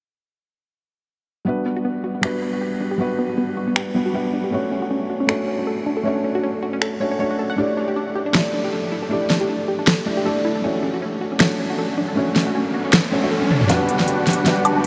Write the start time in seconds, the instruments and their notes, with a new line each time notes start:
1.45 felt piano G3 B3 D4 F#4 B4, synth arpeggio sound B3
1.66 synth arpeggio sound B3
1.76 synth arpeggio sound F#4
1.85 synth arpeggio sound B3
2.04 synth arpeggio sound F#4
2.15 synth arpeggio sound B3
2.21 felt piano G3 B3 D4 F#4 B4, synth arpeggio sound G4, finger snap
2.42 synth arpeggio sound B3
2.53 synth arpeggio sound F#4
2.61 synth arpeggio sound G4
2.80 synth arpeggio sound D4
2.91 synth arpeggio sound G4
2.98 felt piano G3 B3 D4 F#4 B4, synth arpeggio sound B3
3.19 synth arpeggio sound B3
3.29 synth arpeggio sound F#4
3.38 synth arpeggio sound B3
3.57 synth arpeggio sound F#4
3.68 synth arpeggio sound B3
3.76 synth arpeggio sound G4, finger snap
3.94 felt piano G3 B3 D4 F#4 B4, synth arpeggio sound B3
4.06 synth arpeggio sound F#4
4.13 felt piano G3 B3 D4 F#4 B4, synth arpeggio sound G4
4.33 synth arpeggio sound D4
4.44 synth arpeggio sound G4
4.50 felt piano A3 C#4 D4 F#4 C#5, synth arpeggio sound C#4
4.72 synth arpeggio sound C#4
4.82 synth arpeggio sound F#4
4.91 synth arpeggio sound C#4
5.10 synth arpeggio sound F#4
5.20 synth arpeggio sound C#4
5.27 felt piano A3 C#4 D4 F#4 C#5, synth arpeggio sound A4, finger snap
5.48 synth arpeggio sound C#4
5.59 synth arpeggio sound F#4
5.67 synth arpeggio sound A4
5.86 synth arpeggio sound D4
5.97 synth arpeggio sound A4
6.03 felt piano A3 C#4 D4 F#4, synth arpeggio sound C#4
6.07 felt piano C#5
6.24 synth arpeggio sound C#4
6.35 synth arpeggio sound F#4
6.43 synth arpeggio sound C#4
6.63 synth arpeggio sound F#4
6.73 synth arpeggio sound C#4
6.82 synth arpeggio sound A4, finger snap
7.00 felt piano A3 C#4 D4 F#4 C#5, synth arpeggio sound C#5
7.11 synth arpeggio sound C#5
7.19 felt piano A3 C#4 D4 F#4 C#5, synth arpeggio sound C#5
7.31 synth arpeggio sound F#4
7.39 synth arpeggio sound A4
7.50 synth arpeggio sound F#5
7.56 felt piano A3 D4 E4 G4, synth arpeggio sound D4
7.60 felt piano D5
7.77 synth arpeggio sound D4
7.88 synth arpeggio sound G4
7.96 synth arpeggio sound D4
8.15 synth arpeggio sound G4
8.26 synth arpeggio sound D4
8.32 felt piano A3 D4 E4 G4, synth arpeggio sound A4, finger snap, snare
8.37 felt piano D5
8.54 synth arpeggio sound D4
8.64 synth arpeggio sound G4
8.73 synth arpeggio sound A4
8.92 synth arpeggio sound E4
9.02 synth arpeggio sound A4
9.09 felt piano A3 D4 E4 G4, synth arpeggio sound D4
9.13 felt piano D5
9.30 synth arpeggio sound D4, snare
9.41 synth arpeggio sound G4
9.49 synth arpeggio sound D4
9.68 synth arpeggio sound G4
9.79 synth arpeggio sound D4
9.87 synth arpeggio sound A4, finger snap, snare
10.05 felt piano A3 D4 E4 G4 D5, synth arpeggio sound D4
10.17 synth arpeggio sound G4
10.25 felt piano A3 D4 E4 G4 D5, synth arpeggio sound A4
10.45 synth arpeggio sound E4
10.55 synth arpeggio sound A4
10.62 felt piano A3 C#4 D4 F#4, synth arpeggio sound C#4, riser
10.66 felt piano C#5
10.83 synth arpeggio sound C#4
10.94 synth arpeggio sound F#4
11.02 synth arpeggio sound C#4
11.21 synth arpeggio sound F#4
11.32 synth arpeggio sound C#4
11.38 felt piano A3 C#4 D4 F#4, synth arpeggio sound A4, finger snap, snare
11.42 felt piano C#5
11.59 synth arpeggio sound C#4
11.70 synth arpeggio sound F#4
11.79 synth arpeggio sound A4
11.98 synth arpeggio sound D4
12.08 synth arpeggio sound A4
12.15 felt piano A3 C#4 D4 F#4 C#5, synth arpeggio sound C#4
12.36 synth arpeggio sound C#4, snare
12.47 synth arpeggio sound F#4
12.55 synth arpeggio sound C#4
12.74 synth arpeggio sound F#4
12.85 synth arpeggio sound C#4
12.93 synth arpeggio sound A4, finger snap, snare
13.11 felt piano A3 C#4 D4 F#4 C#5, synth arpeggio sound C#4
13.22 felt piano A3 C#4 D4 F#4 C#5, synth arpeggio sound F#4
13.31 synth arpeggio sound A4
13.42 high tom
13.50 synth arpeggio sound D4, mid tom
13.61 synth arpeggio sound A4, mid tom
13.67 felt piano G3 B3 D4 B4 F#5, supersaw synth D4 F#4 G4 B4 F#5, snare, closed hi-hat, riser
13.89 closed hi-hat
13.99 snare
14.08 closed hi-hat
14.27 snare, closed hi-hat
14.30 closed hi-hat
14.33 closed hi-hat
14.44 felt piano G3 B3 D4 F#5, snare, closed hi-hat
14.48 felt piano B4
14.65 flute A5, closed hi-hat, high woodblock
14.76 flute A5